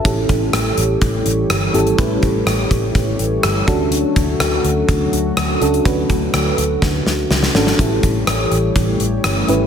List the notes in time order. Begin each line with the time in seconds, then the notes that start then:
0.05 A1 E3 G3 A3 C#4 E4 G4 A4 C#5, kick, closed hi-hat
0.29 A1, kick, closed hi-hat
0.53 A1, cross-stick, closed hi-hat
0.78 A1, closed hi-hat
1.01 A1, kick, closed hi-hat
1.26 A1, closed hi-hat
1.50 G1, cross-stick, closed hi-hat
1.74 G#1 C#4 E4 G4 A4, closed hi-hat
1.87 closed hi-hat
1.98 A1 C#4 E4 G4 B4, kick, closed hi-hat
2.23 A1, kick, closed hi-hat
2.47 A1, cross-stick, closed hi-hat
2.71 A1, kick, closed hi-hat
2.95 A1, kick, closed hi-hat
3.19 A1, closed hi-hat
3.43 G1, cross-stick, closed hi-hat
3.67 D2 D3 F#3 C#4 D4 F#4 A4, kick, closed hi-hat
3.92 closed hi-hat
4.16 D2, kick, closed hi-hat
4.40 D2, cross-stick, closed hi-hat
4.64 D2, closed hi-hat
4.88 D2, kick, closed hi-hat
5.13 D2, closed hi-hat
5.37 D2, cross-stick, closed hi-hat
5.61 C#2 C#4 D4 F#4 A4, closed hi-hat
5.74 closed hi-hat
5.85 D2 C#4 D4 F#4 B4, kick, closed hi-hat
6.10 D2, kick, closed hi-hat
6.34 D2, cross-stick, closed hi-hat
6.58 D2, closed hi-hat
6.82 D2, kick, snare
7.06 D2, snare
7.30 C#2, snare
7.43 snare
7.55 G#1 C#4 D4 F#4 A4, snare
7.67 snare
7.79 A1 E3 G3 A3 C#4 E4 G4 A4 C#5, kick, closed hi-hat
8.03 A1, kick, closed hi-hat
8.27 A1, cross-stick, closed hi-hat
8.51 A1, closed hi-hat
8.76 A1, kick, closed hi-hat
9.00 A1, closed hi-hat
9.24 G1, cross-stick, closed hi-hat
9.48 G#1 C#4 E4 G4 B4, closed hi-hat